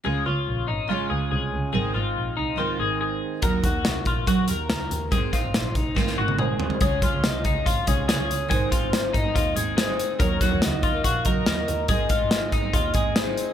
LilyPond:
<<
  \new Staff \with { instrumentName = "Soft synth lead" } { \time 4/4 \key des \major \tempo 4 = 142 r1 | r1 | r1 | r2. c''4 |
des''8. des''16 ees''4 f''8 des''8 des''4 | c''8 c''4 ees''4 r8 c''4 | des''8. des''16 ees''4 f''8 ees''4. | ees''2. c''4 | }
  \new Staff \with { instrumentName = "Clean electric guitar" } { \time 4/4 \key des \major aes'8 f'4 ees'8 f'8 aes'8 aes'4 | aes'8 f'4 ees'8 f'8 aes'8 aes'4 | bes'8 ges'4 f'8 ges'8 bes'8 bes'4 | aes'8 f'4 ees'8 f'8 ges'8 aes'4 |
aes'8 f'4 ees'8 f'8 aes'8 aes'4 | aes'8 f'4 ees'8 f'8 aes'8 aes'4 | bes'8 ges'4 f'8 ges'8 bes'8 bes'4 | aes'8 f'4 ees'8 f'8 aes'8 aes'4 | }
  \new Staff \with { instrumentName = "Steel-string acoustic guitar" } { \time 4/4 \key des \major <des aes des' f' des''>8 <des' f' des''>4. <des aes des' f' des''>2 | <aes, ees aes c' ees' c''>8 <aes c' ees' c''>4. <aes, ees aes c' ees' c''>2 | <ees ges ees' ges' bes'>8 <ees' ges' bes'>4. <ees ges ees' ges' bes'>8 <ees' ges' bes'>4. | <aes, ees aes c' ees' c''>8 <aes c' ees' c''>4. <aes, ees aes c' ees' c''>2 |
<des aes des' f' aes'>8 <aes des' f' aes'>4~ <aes des' f' aes'>16 <des' f' aes'>8. <aes des' f' aes'>8. <des' f' aes'>8. | <aes, ees aes c' ees' aes'>8 <aes c' ees' aes'>4~ <aes c' ees' aes'>16 <aes c' ees' aes'>8. <aes c' ees' aes'>8. <aes c' ees' aes'>8. | <ees ges ees' ges' bes'>8 <ges ees' ges' bes'>4~ <ges ees' ges' bes'>16 <ees' ges' bes'>8. <ges ees' ges' bes'>8. <ees' ges' bes'>8. | <aes, ees aes c' ees' aes'>8 <aes c' ees' aes'>4~ <aes c' ees' aes'>16 <aes c' ees' aes'>8. <aes c' ees' aes'>8. <aes c' ees' aes'>8. | }
  \new Staff \with { instrumentName = "Double bass" } { \clef bass \time 4/4 \key des \major des,8 des,8 bes,,8 aes,,8. r16 des,8 c,8 des,8 | aes,,8 aes,,8 bes,,8 c,4 aes,,4 r8 | ees,8 ees,8 c,8 bes,,8. r16 ees,8 des,8 ees,8 | aes,,8 r16 aes,,16 bes,,8 c,4 aes,,4 r8 |
des,8 r16 des,16 c,8 des,8 aes,,8 c,8 des,8 des,8 | aes,,8 r16 aes,,8 r16 aes,,8 ees,8 aes,,4 r8 | ees,8 r16 ees,16 des,8 ees,8 bes,,8 des,8 ees,8 ees,8 | aes,,8 r16 aes,,8 r16 aes,,8 ees,8 aes,,4 r8 | }
  \new DrumStaff \with { instrumentName = "Drums" } \drummode { \time 4/4 r4 r4 r4 r4 | r4 r4 r4 r4 | <hh bd>8 <hh bd>8 <hh sn>8 <hh bd>8 <hh bd>8 hh8 <hh sn>8 hh8 | <hh bd>8 <hh bd sn>8 <hh sn>8 <hh bd>8 <bd sn>16 sn8 tommh16 toml8 tomfh16 tomfh16 |
<hh bd>8 <hh bd>8 <hh sn>8 <hh bd>8 <hh bd>8 <hh bd>8 <hh sn>8 hh8 | <hh bd>8 <hh bd>8 <hh sn>8 <hh bd>8 <hh bd>8 hh8 <hh sn>8 hh8 | <hh bd>8 <hh bd sn>8 <hh sn>8 <hh bd>8 <hh bd>8 <hh bd>8 <hh sn>8 hh8 | <hh bd>8 <hh bd>8 <hh sn>8 <hh bd>8 <hh bd>8 <hh bd>8 <hh sn>8 hh8 | }
>>